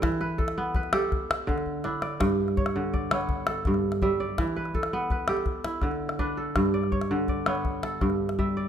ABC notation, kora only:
X:1
M:12/8
L:1/8
Q:3/8=110
K:Glyd
V:1 name="Kora"
[Ag] B A2 B A2 z3 E d- | d z c2 d c2 A3 e d- | d B A2 B A2 E3 B A- | A d c2 d c2 A3 e d |]
V:2 name="Kora" clef=bass
E,2 z B,2 G z2 D,2 D2 | G,,2 z D,2 B,2 z G,,2 G,2 | E,2 z B,2 G z2 D,2 D2 | G,,2 z D,2 B,2 z G,,2 G,2 |]